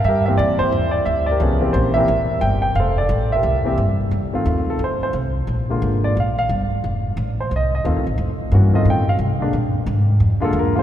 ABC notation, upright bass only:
X:1
M:4/4
L:1/8
Q:"Swing" 1/4=177
K:F
V:1 name="Upright bass" clef=bass
G,,2 F,, z E,,2 D,,2 | C,,2 B,,,2 A,,, z G,,,2 | F,,,2 A,,,2 C,,2 G,,2 | F,,2 _E,,2 D,, z C,,2 |
B,,,2 _A,,,2 B,,,2 G,,, z | F,,,2 A,,,2 C,,2 (3_E,, C,, A,,, | F,,2 G,,2 A,,2 C,2 | B,,2 _A,,2 F,, z E,,2 |]